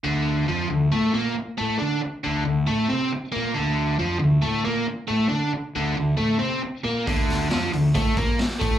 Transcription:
<<
  \new Staff \with { instrumentName = "Overdriven electric guitar" } { \time 4/4 \key d \minor \tempo 4 = 137 d4 f8 d8 a8 bes8 r8 a8 | d'8 r8 d8 d8 a8 c'8 r8 bes8 | d4 f8 d8 a8 bes8 r8 a8 | d'8 r8 d8 d8 a8 c'8 r8 bes8 |
d4 f8 d8 a8 bes8 r8 a8 | }
  \new Staff \with { instrumentName = "Fingered electric bass" } { \clef bass \time 4/4 \key d \minor d,4 f,8 d,8 a,8 bes,8 r8 a,8 | d8 r8 d,8 d,8 a,8 c8 r8 bes,8 | d,4 f,8 d,8 a,8 bes,8 r8 a,8 | d8 r8 d,8 d,8 a,8 c8 r8 bes,8 |
d,4 f,8 d,8 a,8 bes,8 r8 a,8 | }
  \new DrumStaff \with { instrumentName = "Drums" } \drummode { \time 4/4 r4 r4 r4 r4 | r4 r4 r4 r4 | r4 r4 r4 r4 | r4 r4 r4 r4 |
<hho bd>8 <hho sn>8 <hho sn>8 hho8 <hho bd>8 <hho bd>8 <hho sn>16 sn16 <hho bd>8 | }
>>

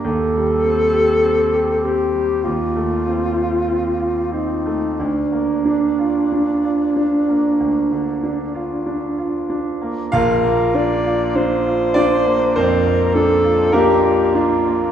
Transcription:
<<
  \new Staff \with { instrumentName = "Alto saxophone" } { \time 4/4 \key bes \major \tempo 4 = 48 a'4. g'8 f'4. ees'8 | d'2.~ d'8 r8 | bes'8 d''8 c''4 bes'8 a'8 g'8 f'8 | }
  \new Staff \with { instrumentName = "Grand piano" } { \time 4/4 \key bes \major << { r1 | r1 | <f' f''>4. <d' d''>8 <c' c''>4 <bes bes'>4 | } \\ { ees,16 g16 c'16 g'16 c'16 g'16 c'16 g16 ees,16 a16 c'16 f'16 c'16 f'16 c'16 a16 | d,16 bes16 d'16 f'16 d'16 f'16 d'16 bes16 d,16 d16 d'16 f'16 d'16 f'16 d'16 bes16 | bes,,16 bes16 d'16 f'16 d'16 f'8 bes16 f,16 bes16 d'16 f'16 d'16 f'16 d'16 bes16 | } >> }
>>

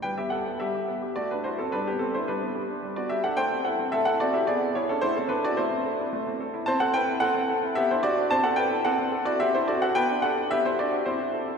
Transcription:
\new Staff \with { instrumentName = "Grand piano" } { \time 3/4 \key g \major \tempo 4 = 109 << { <b' g''>16 <g' e''>16 <a' fis''>8 <g' e''>4 <fis' d''>16 <d' b'>16 <e' c''>16 <c' a'>16 | <d' b'>16 <b g'>16 <c' a'>16 <e' c''>16 <d' b'>4~ <d' b'>16 <fis' d''>16 <g' e''>16 <a' fis''>16 | <c'' g''>8 <a' fis''>8 <a' e''>16 <a' fis''>16 <fis' d''>16 <g' e''>16 <gis' d''>8 <e' cis''>16 <cis' a'>16 | <e' c''>16 <c' a'>16 <d' b'>16 <fis' d''>16 <e' c''>4. r8 |
<c'' a''>16 <a' fis''>16 <b' g''>8 <a' fis''>4 <g' e''>16 <e' c''>16 <fis' d''>8 | <c'' a''>16 <a' fis''>16 <b' g''>8 <a' fis''>8. <fis' d''>16 <g' e''>16 <e' c''>16 <fis' d''>16 <a' fis''>16 | <b' g''>8 <a' fis''>8 <g' e''>16 <e' c''>16 <fis' d''>8 <e' c''>4 | } \\ { g16 b16 g'16 b16 g16 g'16 b16 g'16 a16 a16 fis'16 r16 | g16 r16 g'16 d'16 g16 b16 g'16 d'16 g16 b16 r16 d'16 | a16 c'16 e'16 c'16 a16 e'16 c'16 e'16 b16 b16 gis'16 d'16 | a16 r16 a'16 e'16 a16 c'16 a'16 e'16 a16 c'16 a'16 e'16 |
c'16 c'16 a'16 e'16 c'16 c'16 a'16 e'16 b16 d'16 g'16 d'16 | c'16 c'16 a'16 e'16 c'16 c'16 a'16 e'16 c'16 d'16 a'16 fis'16 | b16 d'16 g'16 d'16 b16 g'16 d'16 g'16 c'16 e'16 a'16 e'16 | } >> }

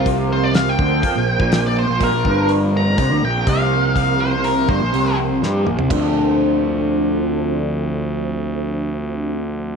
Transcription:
<<
  \new Staff \with { instrumentName = "Lead electric guitar" } { \time 4/4 \key d \minor \tempo 4 = 123 r8 c''16 d''16 f''16 g''2 d''16 c''8 | bes'4 r8 bes''4 g''8 f''4 | f''8 c''8 bes'8 c''4 r4. | r1 |
r1 | }
  \new Staff \with { instrumentName = "String machine" } { \time 4/4 \key d \minor <f bes c' bes' c''>1~ | <f bes c' bes' c''>1~ | <f bes c' bes' c''>1 | <f c' d' a' c''>1~ |
<f c' d' a' c''>1 | }
  \new Staff \with { instrumentName = "Clean electric guitar" } { \clef bass \time 4/4 \key d \minor c4. d8 f16 bes,8 bes,4 bes,16 | bes,16 bes,16 g,4. c16 d16 bes,8 c4~ | c4. g,16 bes,16 c4 g8 bes,16 c16 | <d f c' d' a'>1~ |
<d f c' d' a'>1 | }
  \new Staff \with { instrumentName = "Picked electric bass" } { \clef bass \time 4/4 \key d \minor c,4. d,8 f,16 bes,,8 bes,,4 bes,,16 | bes,,16 bes,,16 g,,4. c,16 d,16 bes,,8 c,4~ | c,4. g,,16 bes,,16 c,4 g,8 bes,,16 c,16 | d,1~ |
d,1 | }
  \new DrumStaff \with { instrumentName = "Drums" } \drummode { \time 4/4 <hho bd>4 <hho sn>8 bd8 <hho bd>8. bd16 <hho sn>4 | <hho bd>8 bd8 hho4 <hho bd>4 <hho bd>4 | <hho bd>4 hho8 bd8 hho4 sn8 toml16 tomfh16 | <cymc bd tomfh>4 r4 r4 r4 |
r4 r4 r4 r4 | }
>>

